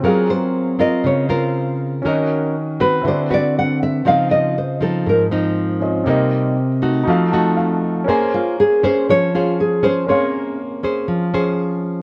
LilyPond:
<<
  \new Staff \with { instrumentName = "Nylon-string guitar" } { \time 4/4 \key bes \minor \tempo 4 = 120 aes'8 c''4 ees''8 des''8 c''4 r8 | r4. ces''8 c''8 d''8 fis''8 e''8 | f''8 ees''8 c''8 a'8 bes'8 r4. | r1 |
r8 f'8 aes'8 c''8 des''8 f'8 aes'8 c''8 | des''4. r2 r8 | }
  \new Staff \with { instrumentName = "Grand piano" } { \time 4/4 \key bes \minor << { r1 | r1 | r1 | r2 r8 a''8 f''4 |
r1 | r1 | } \\ { <c' aes' bes' f''>1 | <des' ges' bes' ees''>2 <c' e' fis' b' d''>2 | <f' c'' ees''>2.~ <f' c'' ees''>8 <des' f' c'' ees''>8 | <c' g' bes' ees''>2 <ees' ges' a' f''>2 |
<des' bes' c'' aes''>1 | <des' bes' f'' c'''>1 | } >> }
  \new Staff \with { instrumentName = "Nylon-string guitar" } { \time 4/4 \key bes \minor << { <c' f' bes'>4. <c' f' bes'>4 <c' f' bes'>4. | <des' ges' bes'>4 r8 <c' ges' ces''>4 <c' fis' b'>4. | <f c' ees'>4 r8 <f c' ees'>4 <f c' ees'>4. | <g bes ees'>4 r8 <a ees' ges'>4 <a ees' ges'>4. |
<des' aes' c''>4. <des' aes' c''>4 <des' aes' c''>4 <des' aes' c''>8 | <des' aes'>4 r8 <des' aes' c''>4 <des' aes' c''>4. | } \\ { ges2 des2 | ees2 d2 | des2 aes,2 | c2 f2 |
bes2 f2 | bes2 f2 | } >> }
>>